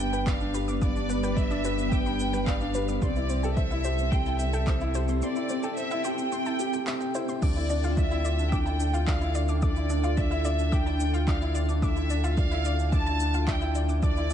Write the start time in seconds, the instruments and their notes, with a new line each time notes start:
Already playing: analog synth bass G1, ambient pad G3 G4 B4 D5, felt piano D4 G4 B4 D5, violin section G5
0.00 felt piano B3, shaker
0.13 felt piano B4, synth arpeggio sound G5, shaker
0.27 synth arpeggio sound D5, felt piano D5, violin section F5, kick, clap, shaker
0.41 felt piano D4, shaker
0.54 felt piano G4, synth arpeggio sound B4, shaker
0.68 felt piano B3, synth arpeggio sound D6, shaker
0.82 felt piano B3, violin section D5, synth arpeggio sound D6, kick, shaker
0.96 felt piano D4, shaker
1.09 felt piano B3, synth arpeggio sound B4, shaker
1.23 felt piano B4, synth arpeggio sound G5, shaker
1.37 felt piano D5, violin section E5, kick, shaker
1.50 felt piano D4, synth arpeggio sound D5, shaker
1.64 felt piano G4, synth arpeggio sound B4, shaker
1.78 felt piano B3, shaker
1.92 felt piano B3, violin section G5, synth arpeggio sound D6, kick, shaker
2.06 felt piano D4, synth arpeggio sound B5, shaker
2.20 felt piano B3, shaker
2.33 felt piano B4, synth arpeggio sound G5, shaker
2.47 synth arpeggio sound D5, felt piano D5, violin section F5, kick, clap, shaker
2.61 felt piano D4, shaker
2.74 felt piano G4, synth arpeggio sound B4, shaker
2.88 felt piano B3, synth arpeggio sound D6, shaker
3.02 analog synth bass C2, ambient pad C4, felt piano C4, violin section D5, synth arpeggio sound C6, kick, shaker
3.16 felt piano E4, shaker
3.29 felt piano C4, synth arpeggio sound C5, shaker
3.40 ambient pad A4, synth arpeggio sound G5, shaker
3.44 felt piano A4
3.55 felt piano C5, violin section E5, ambient pad G5, kick, shaker
3.71 felt piano E4, synth arpeggio sound E5, shaker
3.84 felt piano G4, synth arpeggio sound C5, shaker
3.99 felt piano C4, shaker
4.12 felt piano C4, violin section G5, synth arpeggio sound C6, kick, shaker
4.26 felt piano E4, synth arpeggio sound A5, shaker
4.39 felt piano C4, violin section E5, shaker
4.53 felt piano A4, synth arpeggio sound G5, shaker
4.67 felt piano C5, synth arpeggio sound E5, kick, clap, shaker
4.81 felt piano E4, shaker
4.95 felt piano G4, synth arpeggio sound C5, shaker
5.08 felt piano C4, synth arpeggio sound C6, shaker
5.22 felt piano C4, violin section D5, synth arpeggio sound C6, shaker
5.36 felt piano E4, shaker
5.49 felt piano C4, synth arpeggio sound C5, shaker
5.63 felt piano A4, synth arpeggio sound G5, shaker
5.77 felt piano C5, violin section E5, shaker
5.91 felt piano E4, synth arpeggio sound E5, shaker
6.05 felt piano G4, synth arpeggio sound C5, violin section G5, shaker
6.18 felt piano C4, shaker
6.32 felt piano C4, synth arpeggio sound C6, shaker
6.46 felt piano E4, synth arpeggio sound A5, shaker
6.60 felt piano G4, shaker
6.73 felt piano G4, synth arpeggio sound G5, shaker
6.87 felt piano C4, synth arpeggio sound E5, clap, shaker
7.00 felt piano G5, shaker
7.14 felt piano E4, synth arpeggio sound C5, shaker
7.29 felt piano C4, synth arpeggio sound C6, shaker
7.42 analog synth bass D2, felt piano D4, ambient pad D4, violin section D5, synth arpeggio sound D6, kick, crash, shaker
7.56 felt piano E4, shaker
7.70 felt piano D4, synth arpeggio sound D5, shaker
7.84 felt piano F4, synth arpeggio sound F5, shaker
7.97 felt piano D5, violin section E5, kick, shaker
8.11 felt piano E4, synth arpeggio sound E5, shaker
8.25 felt piano F4, synth arpeggio sound D5, shaker
8.39 felt piano D4, shaker
8.52 felt piano D4, violin section G5, synth arpeggio sound D6, kick, shaker
8.66 felt piano E4, synth arpeggio sound A5, shaker
8.80 felt piano D4, shaker
8.93 felt piano F4, synth arpeggio sound F5, shaker
9.07 felt piano D5, synth arpeggio sound E5, violin section F5, kick, clap, shaker
9.21 felt piano E4, shaker
9.35 felt piano F4, synth arpeggio sound D5, shaker
9.48 felt piano D4, synth arpeggio sound D6, shaker
9.62 felt piano D4, violin section D5, synth arpeggio sound D6, kick, shaker
9.76 felt piano E4, shaker
9.90 felt piano D4, synth arpeggio sound D5, shaker
10.04 felt piano F4, synth arpeggio sound F5, shaker
10.17 felt piano D5, violin section E5, kick, shaker
10.31 felt piano E4, synth arpeggio sound E5, shaker
10.45 felt piano F4, synth arpeggio sound D5, shaker
10.59 felt piano D4, shaker
10.72 felt piano D4, violin section G5, synth arpeggio sound D6, kick, shaker
10.86 felt piano E4, synth arpeggio sound A5, shaker
11.00 felt piano D4, shaker
11.13 felt piano F4, synth arpeggio sound F5, shaker
11.28 felt piano D5, synth arpeggio sound E5, violin section F5, kick, clap, shaker
11.42 felt piano E4, shaker
11.55 felt piano F4, synth arpeggio sound D5, shaker
11.69 felt piano D4, synth arpeggio sound D6, shaker
11.82 felt piano D4, violin section E5, synth arpeggio sound D6, kick, shaker
11.96 felt piano E4, shaker
12.10 felt piano D4, synth arpeggio sound D5, shaker
12.24 felt piano F4, synth arpeggio sound F5, shaker
12.37 felt piano D5, violin section F5, kick, shaker
12.51 felt piano E4, synth arpeggio sound E5, shaker
12.65 felt piano F4, synth arpeggio sound D5, shaker
12.79 felt piano D4, shaker
12.92 felt piano D4, violin section A5, synth arpeggio sound D6, kick, shaker
13.06 felt piano E4, synth arpeggio sound A5, shaker
13.20 felt piano D4, shaker
13.34 felt piano F4, synth arpeggio sound F5, shaker
13.48 felt piano D5, synth arpeggio sound E5, violin section G5, kick, clap, shaker
13.61 felt piano E4, shaker
13.75 felt piano F4, synth arpeggio sound D5, shaker
13.89 felt piano D4, synth arpeggio sound D6, shaker
14.02 felt piano D4, violin section D5, synth arpeggio sound D6, kick, shaker
14.17 felt piano E4, shaker
14.30 shaker